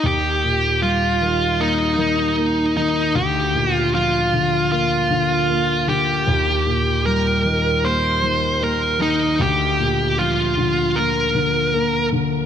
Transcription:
0.03 3.12 D#2 soft
0.03 0.82 G4 soft
0.44 1.95 A#2 soft
0.82 2.34 G3 soft
0.82 1.63 F4 medium
1.21 1.96 D#3 soft
1.59 2.36 A#3 soft
1.59 2.76 D#4 medium
1.98 2.75 D#3 soft
2.38 3.13 A#3 soft
2.77 3.15 D#3 soft
2.77 3.17 D#4 soft
3.15 6.23 D2 soft
3.15 3.74 G4 medium
3.55 5.07 A#2 soft
3.74 3.94 F4 medium
3.94 5.46 F3 soft
3.94 4.70 F4 medium
4.33 5.09 D3 soft
4.72 5.48 A#3 soft
4.72 5.89 F4 medium
5.10 5.86 D3 soft
5.49 6.25 A#3 soft
5.88 6.26 D3 soft
5.88 7.06 G4 medium
6.27 9.35 D#2 medium
6.66 8.18 A#2 soft
7.06 8.58 G3 soft
7.06 7.86 A#4 medium
7.45 8.21 D#3 soft
7.84 8.60 A#3 soft
7.84 8.64 C5 medium
8.22 8.98 D#3 soft
8.61 9.37 A#3 soft
8.61 8.99 A#4 medium
8.99 9.38 D#3 soft
8.99 9.41 D#4 medium
9.39 12.46 D2 soft
9.39 10.20 G4 medium
9.79 11.30 A#2 soft
10.18 11.70 F3 soft
10.18 10.98 F4 medium
10.57 11.33 D3 soft
10.96 11.72 A#3 soft
10.96 12.08 A#4 medium
11.35 12.11 D3 soft
11.74 12.46 A#3 soft
12.12 12.46 D3 soft

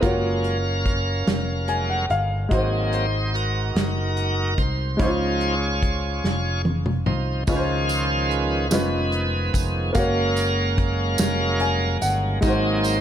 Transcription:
0.01 1.23 F#1 medium
0.01 0.57 F#3 soft
0.01 0.58 G#3 soft
0.01 2.46 A#3 medium
0.01 0.58 A#3 soft
0.01 2.06 C#4 soft
0.01 2.47 F4 soft
0.01 2.48 F#4 soft
0.01 2.05 A#4 medium
0.01 2.06 F5 soft
0.01 kick medium
0.01 closed hi-hat medium
0.06 2.49 C#5 medium
0.44 closed hi-hat soft
0.86 kick medium
0.86 closed hi-hat soft
1.27 2.06 F1 medium
1.27 snare medium
1.27 closed hi-hat medium
1.68 2.05 F#3 soft
1.68 2.06 G#3 soft
1.68 2.06 A#3 soft
1.68 1.88 G#5 medium
1.68 closed hi-hat soft
1.90 2.09 F#5 medium
2.10 2.48 G1 medium
2.10 2.49 F5 medium
2.10 closed hi-hat soft
2.49 3.71 G#1 medium
2.49 3.72 G#2 soft
2.49 3.06 F#3 soft
2.49 4.94 G#3 medium
2.49 3.06 A#3 soft
2.49 3.07 C4 soft
2.49 4.95 D#4 soft
2.49 3.33 D#4 soft
2.49 4.96 F#4 soft
2.49 kick medium
2.49 closed hi-hat medium
2.54 2.95 G#4 medium
2.54 4.97 C5 medium
2.93 3.36 C5 medium
2.93 closed hi-hat soft
3.34 4.54 D#4 medium
3.34 4.54 F#4 medium
3.34 4.62 A#4 medium
3.34 closed hi-hat soft
3.75 4.54 F#1 medium
3.75 snare medium
3.75 closed hi-hat medium
4.17 closed hi-hat soft
4.58 4.96 C2 medium
4.58 5.00 C5 medium
4.58 kick medium
4.58 closed hi-hat soft
4.97 6.20 C#2 medium
4.97 6.20 C#3 soft
4.97 5.55 F3 soft
4.97 7.42 G#3 medium
4.97 7.43 C#4 soft
4.97 5.07 D#4 soft
4.97 5.55 C5 soft
4.97 6.61 C#5 medium
4.97 kick medium
4.97 closed hi-hat medium
5.02 5.56 D#4 soft
5.02 6.62 F4 medium
5.02 6.62 G#4 medium
5.02 7.45 C5 medium
5.08 7.47 F4 soft
5.41 closed hi-hat soft
5.83 kick medium
5.83 closed hi-hat soft
6.24 7.02 F1 medium
6.24 snare soft
6.65 high tom medium
6.86 mid tom medium
7.06 7.44 C2 medium
7.06 7.43 F3 soft
7.06 7.43 D#4 soft
7.06 7.44 C5 soft
7.06 mid tom medium
7.47 8.68 C#2 medium
7.47 8.68 C#3 soft
7.47 8.67 D#3 soft
7.47 8.68 F3 soft
7.47 8.69 G#3 medium
7.47 8.68 G#3 soft
7.47 8.70 C#4 soft
7.47 8.68 C#4 soft
7.47 8.68 F4 soft
7.47 8.71 F4 soft
7.47 7.91 G#4 medium
7.47 7.55 B4 soft
7.47 kick medium
7.47 crash medium
7.47 tambourine soft
7.57 8.76 C5 medium
7.88 8.31 C5 medium
7.88 closed hi-hat soft
7.88 tambourine soft
8.29 9.50 G#4 medium
8.29 9.57 B4 medium
8.29 closed hi-hat soft
8.70 9.50 F1 medium
8.70 9.90 D#3 soft
8.70 9.91 F3 soft
8.70 9.95 G#3 medium
8.70 9.91 B3 soft
8.70 9.95 C#4 soft
8.70 9.96 F4 soft
8.70 9.96 B4 medium
8.70 snare medium
8.70 closed hi-hat medium
8.70 tambourine medium
9.12 closed hi-hat soft
9.53 9.92 F1 medium
9.53 9.96 G#4 medium
9.53 kick medium
9.53 closed hi-hat soft
9.53 tambourine soft
9.93 11.15 F#1 medium
9.93 12.38 F#3 soft
9.93 12.01 G#3 soft
9.93 12.38 A#3 medium
9.93 12.02 A#3 soft
9.93 11.98 C#4 soft
9.93 11.97 A#4 medium
9.93 12.39 F5 soft
9.93 11.97 F5 medium
9.93 kick medium
9.93 closed hi-hat medium
9.93 tambourine soft
9.97 12.40 F#4 soft
9.97 12.41 C#5 medium
10.36 closed hi-hat soft
10.36 tambourine soft
10.78 kick medium
10.78 closed hi-hat soft
11.18 11.98 F1 medium
11.18 snare medium
11.18 closed hi-hat medium
11.18 tambourine medium
11.60 11.99 G#5 medium
11.60 closed hi-hat soft
12.01 12.40 G1 medium
12.01 12.39 C#3 soft
12.01 12.39 G#3 soft
12.01 12.40 A#3 soft
12.01 12.40 F#5 medium
12.01 closed hi-hat soft
12.01 tambourine medium
12.41 13.01 G#1 medium
12.41 13.01 G#2 medium
12.41 12.98 F#3 soft
12.41 13.01 G#3 medium
12.41 12.98 A#3 soft
12.41 12.98 C4 medium
12.41 13.01 D#4 soft
12.41 13.01 D#4 medium
12.41 13.01 F#4 soft
12.41 12.85 G#4 medium
12.41 kick medium
12.41 closed hi-hat medium
12.41 tambourine soft
12.47 13.01 C5 medium
12.83 13.01 C5 medium
12.83 closed hi-hat soft
12.83 tambourine soft

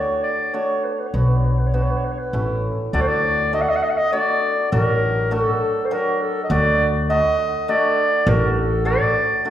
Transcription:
0.00 0.23 A3 medium
0.00 0.23 D4 medium
0.00 0.23 F#4 medium
0.00 0.23 C#5 medium
0.23 0.55 D5 loud
0.54 0.84 A3 medium
0.54 0.84 D4 medium
0.54 0.84 F#4 medium
0.54 0.86 C#5 loud
0.84 0.94 B4 medium
0.92 1.01 C#5 medium
0.99 1.08 B4 medium
1.07 1.15 C#5 medium
1.14 1.86 B1 medium
1.14 1.44 B3 medium
1.14 1.44 D4 medium
1.14 1.44 F#4 medium
1.14 1.23 B4 medium
1.21 1.30 C#5 medium
1.28 1.38 B4 medium
1.36 1.46 C#5 medium
1.45 1.53 B4 medium
1.51 1.60 C#5 medium
1.59 1.69 B4 medium
1.67 1.76 C#5 medium
1.73 2.04 B3 medium
1.73 2.04 D4 medium
1.73 2.04 F#4 medium
1.73 1.84 B4 medium
1.83 1.92 C#5 medium
1.90 1.99 B4 medium
1.98 2.06 C#5 medium
2.05 2.14 B4 medium
2.12 2.20 C#5 medium
2.19 2.64 B4 medium
2.33 2.69 A1 medium
2.33 2.64 A3 medium
2.33 2.64 C#4 medium
2.33 2.64 E4 medium
2.93 3.65 D2 medium
2.93 3.24 A3 medium
2.93 3.24 D4 medium
2.93 3.24 F#4 medium
2.93 3.03 D5 loud
3.01 3.09 C5 medium
3.08 3.54 D5 loud
3.53 3.83 A3 medium
3.53 3.83 D4 medium
3.53 3.83 F#4 medium
3.53 3.63 D#5 loud
3.62 3.71 F#5 medium
3.69 3.77 D#5 loud
3.76 3.84 F#5 loud
3.83 3.92 D#5 medium
3.90 3.99 F#5 medium
3.97 4.12 D#5 loud
4.12 4.43 A3 medium
4.12 4.43 D4 medium
4.12 4.43 F#4 medium
4.12 4.68 D5 loud
4.72 5.44 A1 loud
4.72 5.90 F#3 medium
4.72 5.02 D4 medium
4.72 5.02 F#4 medium
4.72 5.34 A#4 loud
5.31 5.61 A3 medium
5.31 5.61 D4 medium
5.31 5.62 F#4 medium
5.31 5.87 A4 loud
5.85 5.94 C5 medium
5.91 7.14 F#3 medium
5.91 6.21 D4 medium
5.91 6.21 F#4 medium
5.91 6.22 A#4 medium
6.22 6.43 A4 loud
6.44 6.52 D#5 medium
6.50 7.21 D2 loud
6.50 6.80 A3 medium
6.50 6.80 D4 medium
6.50 6.80 F#4 loud
6.50 6.85 D5 loud
7.10 9.50 D3 medium
7.10 7.39 A3 medium
7.10 7.39 F#4 medium
7.10 7.71 D#5 loud
7.68 7.98 A3 medium
7.68 7.98 D4 medium
7.68 7.98 F#4 medium
7.68 8.30 D5 loud
8.27 8.97 A1 loud
8.27 8.56 A3 medium
8.27 8.56 D4 medium
8.27 8.56 F#4 medium
8.27 8.52 A#4 loud
8.52 8.60 A#4 soft
8.59 8.88 A4 medium
8.85 9.15 A3 medium
8.85 9.15 D4 medium
8.85 9.15 F#4 medium
8.85 9.50 D5 loud
9.45 9.50 A3 medium
9.45 9.50 D4 medium
9.45 9.50 F#4 medium

